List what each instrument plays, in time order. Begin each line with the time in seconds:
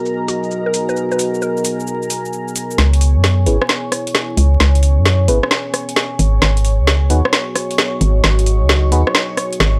Already playing: ambient pad B3 F#4 D#5 G#5, analog synth pad A#4 A#5
0.06 cabasa
0.28 synth pluck F#4, open hi-hat, cabasa
0.43 cabasa
0.51 cabasa
0.66 synth pluck A#4
0.74 open hi-hat, cabasa
0.89 synth pluck B4, cabasa
0.96 cabasa
1.12 synth pluck B4, cabasa
1.19 open hi-hat, cabasa
1.34 cabasa
1.42 synth pluck A#4, cabasa
1.57 cabasa
1.65 open hi-hat, cabasa
1.80 cabasa
1.87 cabasa
2.02 cabasa
2.10 open hi-hat, cabasa
2.25 cabasa
2.33 cabasa
2.48 cabasa
2.56 open hi-hat, cabasa
2.71 cabasa
2.78 fm bass C#2, analog synth pad C#5 C#6, snare, closed hi-hat
2.93 closed hi-hat
2.99 ambient pad E4 C#5, open hi-hat
3.16 fm bass F#2
3.24 snare, closed hi-hat
3.46 fm bass G#1, fm electric piano B3 C#4 E4 G#4 B4, open hi-hat
3.62 cross-stick
3.69 snare, closed hi-hat
3.92 cross-stick, open hi-hat
4.07 closed hi-hat
4.15 snare, closed hi-hat
4.37 fm bass C#2, open hi-hat
4.60 fm bass C#2, snare, closed hi-hat
4.75 closed hi-hat
4.83 open hi-hat
4.98 fm bass F#2
5.06 snare, closed hi-hat
5.28 fm bass G#1, fm electric piano B3 C#4 E4 G#4 B4, open hi-hat
5.43 cross-stick
5.51 snare, closed hi-hat
5.74 cross-stick, open hi-hat
5.89 closed hi-hat
5.96 snare, closed hi-hat
6.19 fm bass G#1, open hi-hat
6.40 fm bass G#1, ambient pad F#4, snare, closed hi-hat
6.57 closed hi-hat
6.65 ambient pad D#5, open hi-hat
6.80 fm bass C#2
6.87 snare, closed hi-hat
7.10 fm bass D#2, fm electric piano B3 D#4 F#4 G#4 B4, open hi-hat
7.25 cross-stick
7.33 snare, closed hi-hat
7.55 cross-stick, open hi-hat
7.71 closed hi-hat
7.78 snare, closed hi-hat
8.01 fm bass G#1, open hi-hat
8.24 fm bass G#1, snare, closed hi-hat
8.39 closed hi-hat
8.46 open hi-hat
8.62 fm bass C#2
8.69 snare, closed hi-hat
8.92 fm bass D#2, fm electric piano B3 D#4 F#4 G#4 B4, open hi-hat
9.07 cross-stick
9.15 snare, closed hi-hat
9.37 cross-stick, open hi-hat
9.53 closed hi-hat
9.60 fm bass G#1, snare, closed hi-hat